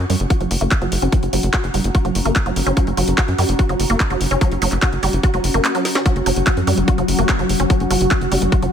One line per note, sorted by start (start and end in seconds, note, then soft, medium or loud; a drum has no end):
0.00 8.72 C#4 medium
0.00 8.72 F#4 medium
0.00 8.72 F#5 medium
0.07 0.15 F#2 loud
0.07 0.16 G3 medium
0.07 6.66 A#5 medium
0.07 open hi-hat medium
0.20 0.26 F#1 medium
0.20 closed hi-hat medium
0.30 0.37 F#4 medium
0.30 kick loud
0.30 closed hi-hat medium
0.41 0.46 F#1 medium
0.41 0.44 F#3 medium
0.41 closed hi-hat soft
0.51 0.57 F#1 loud
0.51 open hi-hat loud
0.61 0.67 F#1 medium
0.61 0.65 A#3 medium
0.61 closed hi-hat soft
0.71 kick loud
0.71 clap loud
0.71 closed hi-hat soft
0.82 0.87 F#1 medium
0.82 0.88 F#3 medium
0.82 closed hi-hat soft
0.92 0.98 F#1 loud
0.92 open hi-hat loud
1.02 1.08 F#1 medium
1.02 1.09 C#4 medium
1.02 closed hi-hat medium
1.12 1.22 F#3 medium
1.12 kick loud
1.12 closed hi-hat medium
1.23 1.28 F#1 medium
1.23 closed hi-hat soft
1.33 1.39 F#1 loud
1.33 1.37 F#3 medium
1.33 open hi-hat loud
1.43 1.49 F#1 medium
1.43 closed hi-hat medium
1.53 1.60 F#4 medium
1.53 kick loud
1.53 clap loud
1.53 closed hi-hat soft
1.64 1.70 F#1 medium
1.64 closed hi-hat soft
1.74 1.80 F#1 loud
1.74 1.81 G3 medium
1.74 open hi-hat medium
1.84 1.90 F#1 medium
1.84 closed hi-hat medium
1.95 2.01 F#4 medium
1.95 kick loud
1.95 closed hi-hat medium
2.05 2.11 F#1 medium
2.05 2.09 F#3 medium
2.05 closed hi-hat soft
2.15 2.21 F#1 loud
2.15 open hi-hat loud
2.25 2.31 F#1 medium
2.25 2.29 A#3 medium
2.25 closed hi-hat medium
2.36 kick loud
2.36 clap loud
2.36 closed hi-hat medium
2.46 2.52 F#1 medium
2.46 2.52 F#3 medium
2.46 closed hi-hat soft
2.56 2.62 G1 loud
2.56 open hi-hat medium
2.67 2.72 F#1 medium
2.67 2.73 C#4 medium
2.67 closed hi-hat medium
2.77 2.86 F#3 medium
2.77 kick loud
2.77 closed hi-hat medium
2.87 2.93 F#1 medium
2.87 closed hi-hat soft
2.97 3.03 F#1 loud
2.97 3.01 F#3 medium
2.97 open hi-hat loud
3.08 3.13 F#1 medium
3.08 closed hi-hat medium
3.18 3.24 F#4 medium
3.18 kick loud
3.18 clap loud
3.18 closed hi-hat medium
3.28 3.34 F#2 medium
3.28 closed hi-hat soft
3.38 3.44 F#2 loud
3.38 3.45 G3 medium
3.38 open hi-hat medium
3.49 3.54 F#1 medium
3.49 closed hi-hat medium
3.59 3.65 F#4 medium
3.59 kick loud
3.59 closed hi-hat medium
3.69 3.75 F#1 medium
3.69 3.73 F#3 medium
3.69 closed hi-hat soft
3.80 3.85 F#1 loud
3.80 open hi-hat loud
3.90 3.96 F#1 medium
3.90 3.94 A#3 medium
3.90 closed hi-hat medium
4.00 kick loud
4.00 clap loud
4.00 closed hi-hat medium
4.10 4.16 F#1 medium
4.10 4.17 F#3 medium
4.10 closed hi-hat soft
4.21 4.26 F#1 loud
4.21 open hi-hat medium
4.31 4.37 F#1 medium
4.31 4.37 C#4 medium
4.31 closed hi-hat medium
4.41 4.51 F#3 medium
4.41 kick loud
4.41 closed hi-hat medium
4.51 4.57 F#1 medium
4.51 closed hi-hat soft
4.62 4.67 F#1 loud
4.62 4.66 F#3 medium
4.62 open hi-hat loud
4.72 4.78 F#1 medium
4.72 clap soft
4.72 closed hi-hat medium
4.82 4.89 F#4 medium
4.82 kick loud
4.82 clap loud
4.82 closed hi-hat medium
4.93 4.98 F#1 medium
4.93 closed hi-hat soft
5.03 5.09 F#1 loud
5.03 5.09 G3 medium
5.03 open hi-hat medium
5.13 5.19 F#1 medium
5.13 closed hi-hat medium
5.23 5.30 F#4 medium
5.23 kick loud
5.23 closed hi-hat medium
5.34 5.39 F#1 medium
5.34 5.38 F#3 medium
5.34 closed hi-hat soft
5.44 5.50 F#1 loud
5.44 open hi-hat loud
5.54 5.60 F#1 medium
5.54 5.58 A#3 medium
5.54 closed hi-hat medium
5.65 clap loud
5.65 closed hi-hat medium
5.75 5.81 F#3 medium
5.75 closed hi-hat soft
5.85 snare medium
5.85 open hi-hat medium
5.95 6.02 C#4 medium
5.95 snare medium
5.95 closed hi-hat medium
6.06 6.15 F#3 medium
6.06 8.72 F#3 medium
6.06 8.72 F#4 medium
6.06 kick loud
6.06 closed hi-hat medium
6.16 6.22 F#1 medium
6.16 closed hi-hat soft
6.26 6.32 F#1 loud
6.26 6.30 F#3 medium
6.26 open hi-hat loud
6.36 6.42 F#1 medium
6.36 closed hi-hat medium
6.47 6.53 F#4 medium
6.47 kick loud
6.47 clap loud
6.47 closed hi-hat medium
6.57 6.63 F#2 medium
6.57 closed hi-hat soft
6.64 6.73 F#2 loud
6.64 6.74 G3 medium
6.64 8.72 C#6 medium
6.64 open hi-hat medium
6.78 6.83 F#1 medium
6.78 closed hi-hat medium
6.88 6.94 F#4 medium
6.88 kick loud
6.88 closed hi-hat medium
6.98 7.04 F#1 medium
6.98 7.02 F#3 medium
6.98 closed hi-hat soft
7.08 7.14 F#1 loud
7.08 open hi-hat loud
7.19 7.24 F#1 medium
7.19 7.22 A#3 medium
7.19 closed hi-hat medium
7.29 kick loud
7.29 clap loud
7.29 closed hi-hat medium
7.39 7.45 F#1 medium
7.39 7.46 F#3 medium
7.39 closed hi-hat soft
7.49 7.55 F#1 loud
7.49 open hi-hat loud
7.60 7.65 F#1 medium
7.60 7.66 C#4 medium
7.60 closed hi-hat medium
7.70 7.80 F#3 medium
7.70 kick loud
7.70 closed hi-hat medium
7.80 7.86 F#1 medium
7.80 closed hi-hat soft
7.91 7.96 F#1 loud
7.91 7.94 F#3 medium
7.91 open hi-hat loud
8.01 8.07 F#1 medium
8.01 closed hi-hat medium
8.11 8.18 F#4 medium
8.11 kick loud
8.11 clap loud
8.11 closed hi-hat medium
8.21 8.27 F#1 medium
8.21 closed hi-hat soft
8.32 8.37 F#1 loud
8.32 8.38 G3 medium
8.32 open hi-hat loud
8.42 8.48 F#1 medium
8.42 closed hi-hat medium
8.52 8.59 F#4 medium
8.52 kick loud
8.52 closed hi-hat medium
8.62 8.68 F#1 medium
8.62 8.66 F#3 medium
8.62 closed hi-hat soft